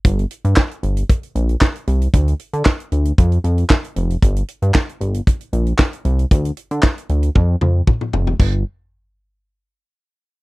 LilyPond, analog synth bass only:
\new Staff \with { instrumentName = "Analog synth bass" } { \clef bass \time 4/4 \key g \minor \tempo 4 = 115 g,,8 r16 g,16 r8 g,,8 r8 bes,,8 r8 c,8 | d,8 r16 d16 r8 d,8 f,8 f,8 r8 f,,8 | g,,8 r16 g,16 r8 g,,8 r8 bes,,8 r8 c,8 | d,8 r16 d16 r8 d,8 f,8 f,8 r8 f,,8 |
g,,8 r2. r8 | }